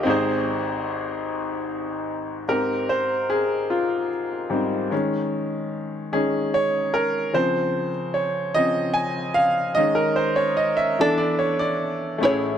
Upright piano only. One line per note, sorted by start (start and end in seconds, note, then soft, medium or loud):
0.00 2.43 C4 medium
0.00 0.25 G4 soft
0.00 0.25 D#5 medium
0.06 2.45 G#1 medium
0.06 2.45 G#2 medium
0.06 2.45 D#4 medium
0.06 2.46 G#4 medium
0.10 2.47 C5 medium
2.48 4.48 G#2 soft
2.48 4.49 C4 soft
2.48 4.88 G4 soft
2.48 2.87 A#4 medium
2.89 2.98 C5 medium
3.30 3.72 G#4 medium
3.70 4.08 F4 medium
4.50 4.87 G#2 soft
4.50 4.87 G3 soft
4.50 4.88 C4 soft
4.90 6.09 D#3 soft
4.90 6.09 G#3 soft
4.90 6.09 C#4 medium
6.12 6.49 D#3 soft
6.12 6.49 G#3 soft
6.12 6.50 C#4 soft
6.12 6.51 G#4 medium
6.54 6.92 C#5 medium
6.94 7.36 A#4 medium
7.33 7.88 C#3 soft
7.33 7.88 F3 soft
7.33 7.88 C4 medium
7.33 7.72 C5 medium
8.14 8.52 C#5 medium
8.55 8.92 C#3 soft
8.55 8.92 F3 soft
8.55 8.93 C4 soft
8.55 8.93 D#5 medium
8.94 9.37 G#5 medium
9.34 9.78 F5 loud
9.75 10.31 D#3 medium
9.75 10.31 G#3 soft
9.75 10.32 C#4 medium
9.75 9.95 D#5 medium
9.95 10.15 A#4 medium
10.16 10.38 C5 medium
10.36 10.58 C#5 medium
10.57 10.79 D#5 medium
10.77 11.20 E5 medium
10.99 12.17 E3 medium
10.99 12.17 B3 soft
10.99 12.18 D4 medium
11.18 11.40 D5 medium
11.39 11.60 C#5 medium
11.59 12.17 D5 medium
12.18 12.58 A1 medium
12.18 12.58 A2 medium
12.18 12.58 A3 medium
12.18 12.58 C#4 medium
12.18 12.58 E4 soft
12.25 12.58 G#4 medium